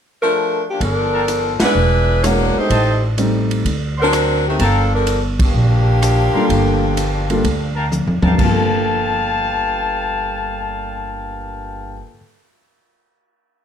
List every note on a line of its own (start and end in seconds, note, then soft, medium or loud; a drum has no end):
0.21 0.64 F3 medium
0.21 0.64 A3 medium
0.21 0.64 D4 medium
0.21 0.64 A#4 medium
0.71 0.82 F3 medium
0.71 0.83 A#3 medium
0.71 0.82 D4 medium
0.71 0.83 G4 medium
0.80 1.57 G1 medium
0.80 1.58 F3 medium
0.80 1.58 D4 medium
0.80 1.58 A4 medium
0.80 1.58 A#4 loud
0.80 kick soft
0.80 ride medium
1.13 1.23 A#4 medium
1.13 1.23 F5 medium
1.13 1.23 G5 medium
1.13 1.23 A5 medium
1.28 hi-hat pedal medium
1.28 ride medium
1.59 1.75 G#3 medium
1.59 1.75 B3 medium
1.59 1.75 D4 medium
1.59 1.75 E4 medium
1.59 1.70 B4 medium
1.59 1.70 D5 medium
1.59 1.70 E5 medium
1.59 1.70 F#5 medium
1.59 muted upright bass stroke soft
1.59 snare medium
1.59 ride medium
1.64 2.21 G#3 medium
1.64 2.21 D4 medium
1.64 2.21 E4 medium
1.64 1.76 B4 medium
1.64 2.21 B4 medium
1.75 2.51 E1 medium
2.23 2.71 G#3 medium
2.23 2.56 A#3 medium
2.23 2.71 B3 soft
2.23 2.56 D4 medium
2.23 2.71 D4 soft
2.23 2.71 E4 soft
2.23 2.57 F#4 medium
2.23 2.72 A#4 medium
2.23 2.56 C#5 loud
2.23 cross-stick medium
2.23 hi-hat pedal medium
2.23 ride medium
2.55 3.04 A3 medium
2.55 3.05 D#4 medium
2.55 3.04 G4 medium
2.55 3.04 C5 medium
2.55 muted upright bass stroke soft
2.70 3.61 A1 medium
2.70 2.92 C5 medium
2.70 2.92 D#5 medium
2.70 2.92 G5 medium
2.70 2.92 A5 medium
2.70 kick soft
2.70 ride medium
3.17 3.65 G3 medium
3.17 3.65 A3 soft
3.17 3.66 C4 medium
3.17 3.65 D#4 soft
3.17 3.66 A4 medium
3.17 hi-hat pedal soft
3.17 ride medium
3.51 ride soft
3.65 4.56 D2 medium
3.65 kick soft
3.65 ride medium
3.97 4.07 C5 medium
3.97 4.07 D5 medium
3.97 4.08 F#5 medium
3.97 4.07 C6 medium
4.02 4.44 F#3 medium
4.02 4.44 C4 loud
4.02 4.44 D4 loud
4.02 4.44 A#4 loud
4.13 cross-stick medium
4.13 hi-hat pedal medium
4.13 ride medium
4.48 4.61 D#3 medium
4.48 4.61 A3 medium
4.48 4.61 C4 medium
4.48 4.61 G4 medium
4.59 5.50 G1 medium
4.59 4.82 A#4 medium
4.59 4.82 F5 medium
4.59 4.81 G5 medium
4.59 4.82 A5 medium
4.59 kick soft
4.59 ride medium
4.63 4.94 F3 medium
4.63 4.93 A#3 loud
4.63 4.94 D4 loud
4.63 4.93 A4 loud
4.95 5.23 F3 medium
4.95 5.23 D4 medium
4.95 5.23 A4 medium
4.95 5.23 A#4 medium
5.07 hi-hat pedal medium
5.07 ride medium
5.39 kick medium
5.39 ride medium
5.44 7.89 F3 medium
5.44 7.89 A#3 medium
5.44 7.89 D4 medium
5.44 7.89 G4 loud
5.54 6.30 A#1 medium
6.02 cross-stick medium
6.02 hi-hat pedal medium
6.02 ride medium
6.33 6.93 G3 medium
6.33 6.93 A#3 soft
6.33 6.94 D4 medium
6.33 6.94 F4 medium
6.33 6.94 A4 medium
6.33 6.44 A#4 medium
6.33 6.44 F5 medium
6.33 6.44 G5 medium
6.33 6.44 C6 medium
6.33 muted upright bass stroke soft
6.49 7.39 G1 medium
6.49 kick soft
6.49 ride medium
6.97 hi-hat pedal soft
6.97 ride medium
7.30 7.42 G3 medium
7.30 7.43 A#3 soft
7.30 7.43 D4 medium
7.30 7.43 F4 medium
7.30 7.43 A4 medium
7.30 ride soft
7.44 8.03 D2 medium
7.44 kick soft
7.44 ride medium
7.75 7.86 A#4 medium
7.75 7.86 F5 medium
7.75 7.86 G5 medium
7.75 7.86 A5 medium
7.92 hi-hat pedal soft
7.92 high tom soft
8.07 8.21 F2 medium
8.07 high tom medium
8.22 8.37 D2 medium
8.22 8.34 A#4 medium
8.22 8.33 F5 medium
8.22 8.33 G5 medium
8.22 8.33 A5 medium
8.22 high tom medium
8.26 11.91 G2 medium
8.31 11.97 G3 medium
8.37 12.00 G1 medium
8.37 12.03 A#3 medium
8.37 12.03 F5 medium
8.37 12.03 G5 medium
8.37 12.03 A5 loud
8.37 kick medium
8.37 crash medium
8.44 12.09 F4 medium
8.51 12.16 A4 medium